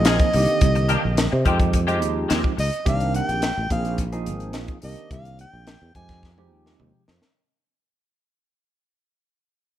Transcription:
Already playing: tine electric piano F3 A#3 C4 D#4 G#4, soprano saxophone D#5
0.05 fretless electric bass A#1, clean electric guitar F3 C4 D#4 G#4, snare, closed hi-hat
0.19 muted clean electric guitar stroke, kick, closed hi-hat
0.33 fretless electric bass C2, tine electric piano D3 D#3 A#3 C4 G4, muted clean electric guitar stroke, open hi-hat
0.47 closed hi-hat
0.61 fretless electric bass C2, kick, closed hi-hat
0.75 muted clean electric guitar stroke, closed hi-hat
0.89 clean electric guitar D#3 A#3 D4 G4, closed hi-hat
1.03 fretless electric bass A#1, muted clean electric guitar stroke
1.17 snare, closed hi-hat
1.32 fretless electric bass C3, muted clean electric guitar stroke
1.45 fretless electric bass F2, clean electric guitar D#3 G#3 C4 G4, tine electric piano F3 G#3 C4 D#4 G4, kick, closed hi-hat
1.59 muted clean electric guitar stroke, kick, closed hi-hat
1.73 muted clean electric guitar stroke, kick, closed hi-hat
1.87 clean electric guitar D#3 G#3 C4 G4, tine electric piano F3 G#3 C4 D#4 G4, closed hi-hat
2.01 fretless electric bass D#2, muted clean electric guitar stroke, closed hi-hat
2.29 fretless electric bass D#2, clean electric guitar D#3 G#3 C4 G4, snare, closed hi-hat
2.42 muted clean electric guitar stroke, kick
2.57 fretless electric bass C#2, soprano saxophone D#5, muted clean electric guitar stroke, open hi-hat
2.73 closed hi-hat
2.85 fretless electric bass C2, tine electric piano D#3 A#3 C4 D4 G4, soprano saxophone F5, kick, closed hi-hat
3.00 closed hi-hat
3.14 soprano saxophone G5, closed hi-hat
3.29 fretless electric bass A#1, closed hi-hat
3.42 snare, closed hi-hat
3.58 fretless electric bass A1
3.70 fretless electric bass A#1, tine electric piano F3 A#3 C4 D#4 G#4, soprano saxophone F5, kick, closed hi-hat
3.85 closed hi-hat
3.98 kick, closed hi-hat
4.12 tine electric piano F3 A#3 C4 D#4 G#4, closed hi-hat
4.26 fretless electric bass G#1, closed hi-hat
4.40 closed hi-hat
4.53 fretless electric bass A#1, snare, closed hi-hat
4.68 kick, closed hi-hat
4.82 fretless electric bass C2, tine electric piano D#3 A#3 C4 D4 G4, soprano saxophone D#5, open hi-hat
4.96 closed hi-hat
5.11 fretless electric bass C2, soprano saxophone F5, kick, closed hi-hat
5.25 closed hi-hat
5.39 soprano saxophone G5, closed hi-hat
5.53 fretless electric bass A#1
5.67 snare, closed hi-hat
5.82 fretless electric bass E2
5.95 fretless electric bass F2, tine electric piano F3 G#3 C4 D#4 G4, soprano saxophone G#5, kick, closed hi-hat
6.09 kick, snare, closed hi-hat
6.23 kick, snare
6.38 tine electric piano F3 G#3 C4 D#4 G4, high tom
6.53 fretless electric bass D#2
6.66 snare
6.80 fretless electric bass D#2, mid tom
7.08 fretless electric bass F2, snare
7.22 snare

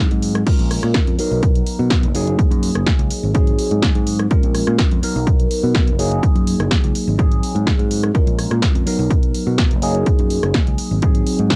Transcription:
Already playing: tine electric piano F#3 C4 D#4 G#4
0.11 fingered electric bass G#2, closed hi-hat
0.22 open hi-hat
0.35 cross-stick, closed hi-hat
0.46 tine electric piano G#3 C#4 F4 A#4, kick, closed hi-hat, crash
0.59 fingered electric bass A#1, closed hi-hat
0.71 cross-stick, open hi-hat
0.83 fingered electric bass A#2, cross-stick, closed hi-hat
0.94 kick, snare, closed hi-hat
1.07 fingered electric bass F2, closed hi-hat
1.18 tine electric piano F#3 B3 D#4 A#4, open hi-hat
1.31 fingered electric bass B1
1.43 kick, closed hi-hat
1.55 closed hi-hat
1.66 open hi-hat
1.79 fingered electric bass B2
1.90 kick, snare, closed hi-hat
2.03 fingered electric bass F#1, closed hi-hat
2.14 tine electric piano F#3 A#3 D#4 G#4, open hi-hat
2.27 closed hi-hat
2.39 muted fingered electric bass stroke, kick, closed hi-hat
2.51 fingered electric bass F#2, closed hi-hat
2.63 open hi-hat
2.75 fingered electric bass F#1, cross-stick, closed hi-hat
2.86 kick, snare, closed hi-hat
2.99 fingered electric bass C#2, closed hi-hat
3.10 open hi-hat
3.23 fingered electric bass G#1
3.34 tine electric piano F#3 C4 D#4 G#4, kick, closed hi-hat
3.47 closed hi-hat
3.59 open hi-hat
3.71 fingered electric bass G#2, closed hi-hat
3.82 kick, snare, closed hi-hat
3.95 fingered electric bass G#2, closed hi-hat
4.07 open hi-hat
4.19 cross-stick, closed hi-hat
4.30 tine electric piano G#3 C#4 F4 A#4, muted fingered electric bass stroke, kick, closed hi-hat
4.43 fingered electric bass A#1, closed hi-hat
4.55 cross-stick, open hi-hat
4.67 fingered electric bass A#2, cross-stick, closed hi-hat
4.78 kick, snare, closed hi-hat
4.91 fingered electric bass F2, closed hi-hat
5.02 tine electric piano F#3 B3 D#4 A#4, muted fingered electric bass stroke, open hi-hat
5.16 fingered electric bass B1
5.27 kick, closed hi-hat
5.40 closed hi-hat
5.51 open hi-hat
5.63 fingered electric bass B2
5.75 kick, snare, closed hi-hat
5.88 fingered electric bass F#1, closed hi-hat
5.98 tine electric piano F#3 A#3 D#4 G#4, open hi-hat
6.12 closed hi-hat
6.23 kick, closed hi-hat
6.35 fingered electric bass F#2, closed hi-hat
6.47 open hi-hat
6.59 fingered electric bass F#1, cross-stick, closed hi-hat
6.71 kick, snare, closed hi-hat
6.84 fingered electric bass C#2, closed hi-hat
6.95 open hi-hat
7.08 fingered electric bass G#1
7.18 tine electric piano F#3 C4 D#4 G#4, kick, closed hi-hat
7.32 closed hi-hat
7.43 open hi-hat
7.55 fingered electric bass G#2, closed hi-hat
7.67 kick, snare, closed hi-hat
7.79 fingered electric bass G#2, closed hi-hat
7.91 open hi-hat
8.03 cross-stick, closed hi-hat
8.14 tine electric piano G#3 C#4 F4 A#4, kick, closed hi-hat
8.27 fingered electric bass A#1, closed hi-hat
8.39 cross-stick, open hi-hat
8.51 fingered electric bass A#2, cross-stick, closed hi-hat
8.62 kick, snare, closed hi-hat
8.75 fingered electric bass F2, closed hi-hat
8.86 tine electric piano F#3 B3 D#4 A#4, muted fingered electric bass stroke, open hi-hat
8.99 fingered electric bass B1
9.11 kick, closed hi-hat
9.23 closed hi-hat
9.35 open hi-hat
9.47 fingered electric bass B2
9.58 kick, snare, closed hi-hat
9.71 fingered electric bass F#1, closed hi-hat
9.82 tine electric piano F#3 A#3 D#4 G#4, open hi-hat
9.95 closed hi-hat
10.06 kick, closed hi-hat
10.19 fingered electric bass F#2, closed hi-hat
10.30 open hi-hat
10.43 fingered electric bass F#1, cross-stick, closed hi-hat
10.54 kick, snare, closed hi-hat
10.67 fingered electric bass C#2, closed hi-hat
10.78 muted fingered electric bass stroke, open hi-hat
10.91 fingered electric bass G#1
11.02 tine electric piano F#3 C4 D#4 G#4, kick, closed hi-hat
11.15 closed hi-hat
11.27 open hi-hat
11.39 fingered electric bass G#2, closed hi-hat
11.50 kick, snare, closed hi-hat

